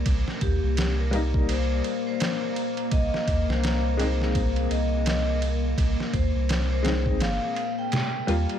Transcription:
Already playing: upright piano G3 A#3 D#4, ambient pad A#3
0.06 sub bass C2, kick, ride
0.28 snare
0.41 sub bass D#2, vibraphone G4, kick, ride
0.63 sub bass C2
0.77 snare, ride
0.99 vibraphone A#4
1.11 upright piano G3 A#3 D#4, ride
1.34 kick
1.49 vibraphone C5, ride
1.84 ride
2.07 vibraphone C5
2.20 snare, ride
2.56 ride
2.77 ride
2.91 sub bass C2, vibraphone D#5, kick, ride
3.14 snare
3.28 sub bass D#2, kick, ride
3.49 sub bass C2, vibraphone C5, snare
3.64 snare, ride
3.97 upright piano G#3 C4 D#4, vibraphone C5, ride
4.22 snare
4.35 kick, ride
4.56 ride
4.70 sub bass C2, vibraphone D#5, ride
5.06 vibraphone D#5, snare, ride
5.42 ride
5.78 sub bass C2, kick, ride
6.00 snare
6.13 sub bass D#2, vibraphone C5, kick, ride
6.35 sub bass C2
6.49 snare, ride
6.71 vibraphone C5
6.83 upright piano G#3 C4, snare, ride
6.87 upright piano D#4
7.06 kick
7.20 sub bass G1, vibraphone F5, snare, ride
7.56 ride
7.79 vibraphone G5
7.92 snare, ride
8.27 sub bass D#2, upright piano G3 A#3 F4, ride
8.49 ride

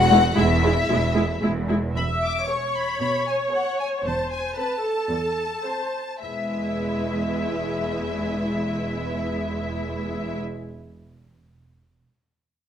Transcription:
Already playing: double bass section E1, cello section E2, violin section F#4 F#5
0.10 viola section G#3 E4
0.36 double bass section E1, cello section E2, viola section G#3 E4, violin section E4 E5
0.63 viola section G#3 E4
0.90 double bass section E1, cello section E2, viola section G#3 E4
1.16 viola section G#3 E4
1.42 double bass section E1, cello section E2, viola section G#3 E4
1.69 viola section G#3 E4
1.96 double bass section E1, cello section E2, viola section E5, violin section B5
2.24 violin section D6
2.48 violin section B3 G#4 C#6, viola section C#5
2.75 violin section B5
3.00 cello section B2, violin section B5
3.27 violin section G#5
3.52 violin section B3 G#4 F#5
3.79 violin section G#5
4.04 double bass section E1, cello section E2, viola section C5, violin section A5
4.31 violin section G#5
4.57 violin section C4 A4 A5, viola section B4
4.84 viola section A4
5.11 cello section E2
5.65 violin section C4 A4, viola section C5
6.22 double bass section E1, cello section E2, viola section G#3 E4, violin section B4 E5

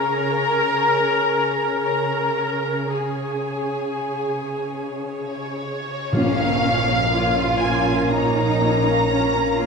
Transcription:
Already playing: cello section C#3, french horn section C#4 G#4, viola section A#4, violin section C#5 A#5, flute A#5
1.82 cello section C#3, viola section A#4, flute A#5, violin section A#5
2.89 french horn section C#4 G#4, viola section G#4, violin section C#5 G#5, flute G#5
5.07 violin section C#5
6.11 double bass section A#1, timpani A#2, viola section A#3 F4, french horn section C#4 A#4, cello section C#4, violin section C#5 F5, tam-tam
6.38 viola section C#4, violin section A#4 F5
6.64 viola section A#3 F4, violin section C#5
6.89 viola section C#4, violin section A#4 F5
7.13 viola section A#3 F4, cello section F4, violin section C#5
7.38 viola section C#4, violin section A#4 F5
7.59 violin section G#5
7.64 viola section A#3 F4, violin section C#5
7.88 viola section C#4, violin section A#4 F5
8.09 viola section A#3 F4, cello section D#4, violin section A#5
8.14 violin section C#5
8.36 viola section C#4, violin section A#4 F5
8.62 viola section A#3 F4, violin section C#5
8.86 viola section C#4, violin section A#4 F5
9.09 viola section A#3 F4, cello section C#4, violin section C#5
9.36 viola section C#4, violin section A#4 F5
9.58 viola section A#3 F4, cello section F4, violin section C#5

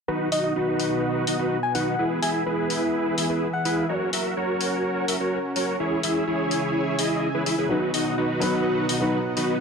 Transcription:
0.08 supersaw synth B2 B3 D#4 F#4 B4 D#5 F#5
0.32 supersaw synth D#4 F#4 D#5, soft synth lead D#5, open hi-hat
0.44 soft synth lead D#5
0.56 supersaw synth D#4 F#4 B4
0.80 open hi-hat
1.27 supersaw synth D#4 F#4 D#5, open hi-hat
1.39 supersaw synth D#4 F#4 B4
1.63 soft synth lead G#5
1.75 supersaw synth D#4 F#4 B4, soft synth lead F#5, open hi-hat
1.99 supersaw synth E3 E4 G#4 B4 E5 B5
2.22 supersaw synth E4 G#4 E5, soft synth lead G#5, open hi-hat
2.34 soft synth lead G#5
2.46 supersaw synth E4 G#4 B4
2.70 open hi-hat
3.18 supersaw synth E4 G#4 E5, open hi-hat
3.30 supersaw synth E4 G#4 B4
3.53 soft synth lead F#5
3.65 supersaw synth E4 G#4 B4, open hi-hat
3.89 supersaw synth C#4 F#4 A#4 C#5
4.13 supersaw synth F#4 A#4 E5, open hi-hat
4.37 supersaw synth F#4 A#4 C#5
4.61 open hi-hat
5.08 supersaw synth F#4 A#4 E5, open hi-hat
5.20 supersaw synth F#4 A#4 C#5
5.56 supersaw synth F#4 A#4 C#5, open hi-hat
5.80 supersaw synth C#3 E4 G#4 C#5 E5 G#5
6.03 supersaw synth E4 G#4 E5, open hi-hat
6.27 supersaw synth E4 G#4 C#5
6.51 open hi-hat
6.99 supersaw synth E4 G#4 D#5, open hi-hat
7.34 supersaw synth E4 G#4 B4
7.46 supersaw synth E4 G#4 E5, open hi-hat
7.58 supersaw synth E4 G#4 B4
7.69 supersaw synth B2 B3 D#4 F#4 B4 D#5 F#5, grand piano F#3 B3 D#4 B4
7.94 supersaw synth D#4 F#4 D#5, open hi-hat
8.18 supersaw synth D#4 F#4 B4
8.40 grand piano F#3 B3 D#4 B4, open hi-hat
8.89 supersaw synth D#4 F#4 D#5, open hi-hat
9.00 grand piano F#3 B3 D#4 B4, supersaw synth D#4 F#4 B4
9.37 supersaw synth D#4 F#4 B4, open hi-hat

